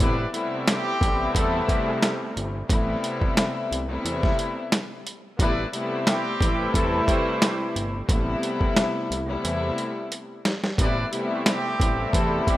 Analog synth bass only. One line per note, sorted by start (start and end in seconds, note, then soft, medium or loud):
0.00 0.27 A1 loud
1.02 1.29 A1 medium
1.35 1.62 E2 medium
2.36 2.63 G1 loud
2.70 2.97 A1 loud
3.71 3.98 C2 medium
4.05 4.32 E2 loud
5.40 5.67 A1 loud
6.41 6.68 A1 medium
6.74 7.01 E2 medium
7.76 8.03 G1 loud
8.09 8.36 A1 loud
9.11 9.38 C2 medium
9.44 9.71 E2 loud
10.79 11.06 A1 loud
11.80 12.07 A1 medium
12.14 12.41 E2 medium